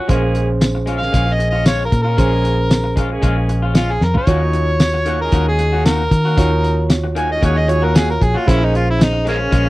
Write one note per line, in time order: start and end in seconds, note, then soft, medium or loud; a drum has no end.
0.08 1.10 A#1 loud
0.08 0.22 G#3 medium
0.08 0.50 G#3 medium
0.08 0.50 A#3 medium
0.08 2.14 C#4 medium
0.08 0.22 C#4 medium
0.08 0.50 C#4 medium
0.08 0.21 F4 loud
0.08 2.14 G#4 medium
0.08 0.50 G#4 medium
0.08 2.15 C5 medium
0.08 kick loud
0.08 closed hi-hat medium
0.22 muted clean electric guitar stroke medium
0.34 muted clean electric guitar stroke soft
0.34 closed hi-hat medium
0.61 muted clean electric guitar stroke soft
0.61 snare loud
0.61 closed hi-hat medium
0.61 tambourine loud
0.75 muted clean electric guitar stroke soft
0.86 0.95 F3 medium
0.86 1.01 G#3 medium
0.86 1.00 C#4 medium
0.86 0.95 C#4 medium
0.86 0.95 F4 medium
0.86 0.99 F4 medium
0.86 closed hi-hat medium
0.98 1.54 A#3 medium
0.98 1.35 F5 medium
0.98 muted clean electric guitar stroke soft
1.02 1.54 G#3 medium
1.02 1.54 C#4 medium
1.02 1.54 G#4 medium
1.02 snare soft
1.12 1.88 A#1 medium
1.12 1.27 G#3 medium
1.12 1.26 C#4 medium
1.12 1.25 F4 medium
1.12 kick medium
1.12 closed hi-hat medium
1.26 muted clean electric guitar stroke soft
1.34 1.49 D#5 medium
1.38 muted clean electric guitar stroke soft
1.38 closed hi-hat medium
1.50 1.65 F4 medium
1.50 1.66 D#5 medium
1.55 1.65 C#4 soft
1.65 1.82 G#3 medium
1.65 1.82 C#4 medium
1.65 1.83 F4 medium
1.65 1.84 C#5 medium
1.65 snare loud
1.65 closed hi-hat medium
1.65 tambourine loud
1.85 2.01 A#4 medium
1.91 2.17 A#2 medium
1.91 muted clean electric guitar stroke soft
1.91 kick medium
1.91 closed hi-hat medium
2.03 2.17 F4 soft
2.03 3.03 A#4 loud
2.07 2.17 C#4 soft
2.17 3.19 A#1 medium
2.17 2.32 G#3 medium
2.17 2.59 G#3 medium
2.17 2.59 A#3 medium
2.17 4.23 C#4 medium
2.17 2.31 C#4 medium
2.17 2.59 C#4 medium
2.17 2.30 F4 medium
2.17 4.24 G#4 medium
2.17 2.59 G#4 medium
2.17 4.24 C5 medium
2.17 kick loud
2.17 closed hi-hat medium
2.31 muted clean electric guitar stroke soft
2.44 muted clean electric guitar stroke soft
2.44 closed hi-hat medium
2.70 muted clean electric guitar stroke soft
2.70 snare loud
2.70 closed hi-hat medium
2.70 tambourine loud
2.84 muted clean electric guitar stroke soft
2.96 3.10 G#3 medium
2.96 3.04 G#3 medium
2.96 3.04 C#4 medium
2.96 3.10 C#4 medium
2.96 3.09 F4 medium
2.96 3.04 G#4 medium
2.96 kick medium
2.96 closed hi-hat medium
3.10 3.63 G#3 medium
3.10 3.63 A#3 medium
3.10 3.63 C#4 medium
3.10 3.63 G#4 medium
3.10 muted clean electric guitar stroke medium
3.22 3.97 A#1 loud
3.22 3.36 G#3 medium
3.22 3.37 C#4 medium
3.22 3.36 F4 medium
3.22 kick medium
3.22 closed hi-hat medium
3.37 muted clean electric guitar stroke medium
3.48 muted clean electric guitar stroke soft
3.48 closed hi-hat medium
3.62 3.74 C#4 soft
3.62 3.75 F4 medium
3.74 3.91 G#3 medium
3.74 3.92 C#4 medium
3.74 3.92 F4 medium
3.74 3.93 F4 medium
3.74 snare loud
3.74 closed hi-hat medium
3.74 tambourine loud
3.91 4.05 G#4 medium
4.01 4.15 F2 medium
4.01 4.16 A#4 medium
4.01 muted clean electric guitar stroke soft
4.01 snare medium
4.14 4.27 C#4 soft
4.14 4.27 F4 medium
4.14 5.18 C#5 loud
4.14 muted fingered electric bass stroke soft
4.14 floor tom medium
4.27 5.28 D#2 medium
4.27 4.42 D#3 medium
4.27 4.68 D#3 medium
4.27 4.42 A#3 medium
4.27 4.68 C#4 medium
4.27 4.42 C#4 medium
4.27 4.68 D#4 medium
4.27 6.33 F4 medium
4.27 6.33 F#4 medium
4.27 4.41 F#4 medium
4.27 6.33 C#5 medium
4.27 kick loud
4.27 closed hi-hat medium
4.42 muted clean electric guitar stroke soft
4.53 muted clean electric guitar stroke soft
4.53 closed hi-hat medium
4.80 muted clean electric guitar stroke soft
4.80 snare loud
4.80 closed hi-hat medium
4.80 tambourine loud
4.94 muted clean electric guitar stroke soft
5.05 5.20 D#3 medium
5.05 5.13 F#3 medium
5.05 5.20 A#3 medium
5.05 5.19 C#4 medium
5.05 5.13 D#4 medium
5.05 5.13 F#4 medium
5.05 5.19 F#4 medium
5.05 closed hi-hat medium
5.20 5.73 G#3 medium
5.20 5.73 C#4 medium
5.20 5.73 D#4 medium
5.20 5.73 G#4 medium
5.20 5.46 A#4 medium
5.20 muted clean electric guitar stroke soft
5.32 6.07 D#2 medium
5.32 5.46 D#3 medium
5.32 5.47 A#3 medium
5.32 5.46 C#4 medium
5.32 5.45 F#4 medium
5.32 kick medium
5.32 closed hi-hat medium
5.46 5.85 G#4 medium
5.46 muted clean electric guitar stroke soft
5.59 muted clean electric guitar stroke soft
5.59 closed hi-hat medium
5.73 5.84 A#3 soft
5.73 5.85 C#4 soft
5.73 5.85 F#4 medium
5.85 6.01 D#3 medium
5.85 6.02 A#3 medium
5.85 6.02 C#4 medium
5.85 6.02 F#4 medium
5.85 6.87 A#4 loud
5.85 snare loud
5.85 closed hi-hat medium
5.85 tambourine loud
6.11 6.36 D#3 medium
6.11 muted clean electric guitar stroke soft
6.11 kick medium
6.11 closed hi-hat medium
6.25 6.36 A#3 soft
6.25 6.37 C#4 soft
6.25 6.37 F#4 medium
6.36 7.38 D#2 medium
6.36 6.51 D#3 medium
6.36 6.78 D#3 medium
6.36 6.51 A#3 medium
6.36 6.78 C#4 medium
6.36 6.50 C#4 medium
6.36 6.78 D#4 medium
6.36 7.66 F4 medium
6.36 7.66 F#4 soft
6.36 6.49 F#4 medium
6.36 7.66 C#5 medium
6.36 kick loud
6.36 closed hi-hat medium
6.51 muted clean electric guitar stroke soft
6.63 muted clean electric guitar stroke soft
6.63 closed hi-hat medium
6.89 muted clean electric guitar stroke soft
6.89 snare loud
6.89 closed hi-hat medium
6.89 tambourine loud
7.04 muted clean electric guitar stroke soft
7.15 7.30 D#3 medium
7.15 7.24 F#3 medium
7.15 7.30 A#3 medium
7.15 7.29 C#4 medium
7.15 7.23 D#4 medium
7.15 7.24 F#4 medium
7.15 7.29 F#4 medium
7.15 7.30 G#5 medium
7.15 closed hi-hat medium
7.30 7.83 G#3 medium
7.30 7.83 C#4 medium
7.30 7.83 D#4 medium
7.30 7.83 G#4 medium
7.30 7.42 D#5 medium
7.30 muted clean electric guitar stroke soft
7.41 8.17 D#2 loud
7.41 7.56 D#3 medium
7.41 7.56 A#3 medium
7.41 7.56 C#4 medium
7.41 7.55 F#4 medium
7.41 7.60 C#5 medium
7.41 kick medium
7.41 closed hi-hat medium
7.57 7.71 D#5 medium
7.57 muted clean electric guitar stroke soft
7.68 8.47 F4 soft
7.68 8.47 F#4 soft
7.68 8.47 C#5 medium
7.68 7.86 C#5 medium
7.68 muted clean electric guitar stroke soft
7.68 closed hi-hat medium
7.82 7.94 A#3 soft
7.82 7.95 C#4 soft
7.82 7.94 F#4 soft
7.82 7.98 A#4 medium
7.94 8.11 D#3 medium
7.94 8.11 A#3 medium
7.94 8.12 C#4 medium
7.94 8.12 F#4 medium
7.94 8.09 G#4 medium
7.94 snare loud
7.94 closed hi-hat medium
7.94 tambourine loud
8.10 8.25 A#4 medium
8.21 8.34 A#1 loud
8.21 8.39 G#4 medium
8.21 muted clean electric guitar stroke soft
8.21 kick medium
8.21 closed hi-hat medium
8.34 8.46 A#3 soft
8.34 8.46 C#4 soft
8.34 8.51 F4 medium
8.34 8.47 F#4 soft
8.34 muted fingered electric bass stroke soft
8.46 9.48 A#1 loud
8.46 8.61 G#3 medium
8.46 8.87 G#3 medium
8.46 8.88 A#3 medium
8.46 9.69 C#4 medium
8.46 8.60 C#4 medium
8.46 8.87 C#4 medium
8.46 8.66 E4 loud
8.46 8.59 F4 medium
8.46 9.69 G#4 medium
8.46 8.87 G#4 medium
8.46 9.69 C5 medium
8.46 kick loud
8.46 closed hi-hat medium
8.61 8.74 D#4 medium
8.61 muted clean electric guitar stroke medium
8.72 8.88 F4 medium
8.72 muted clean electric guitar stroke soft
8.72 closed hi-hat medium
8.91 9.04 E4 medium
8.99 9.26 D#4 medium
8.99 muted clean electric guitar stroke soft
8.99 snare loud
8.99 closed hi-hat medium
8.99 tambourine loud
9.13 muted clean electric guitar stroke soft
9.25 9.32 G#3 medium
9.25 9.39 G#3 medium
9.25 9.32 C#4 medium
9.25 9.40 C#4 medium
9.25 9.38 F4 medium
9.25 9.32 G#4 medium
9.25 closed hi-hat medium
9.29 9.35 G#3 medium
9.29 9.36 A#3 medium
9.29 9.69 C#4 loud
9.38 9.69 G#3 medium
9.38 9.69 A#3 medium
9.38 9.69 C#4 medium
9.38 9.69 G#4 medium
9.38 muted clean electric guitar stroke soft
9.51 9.69 A#1 loud
9.51 9.65 G#3 medium
9.51 9.65 C#4 medium
9.51 9.63 F4 medium
9.51 kick medium
9.51 closed hi-hat medium
9.64 muted clean electric guitar stroke soft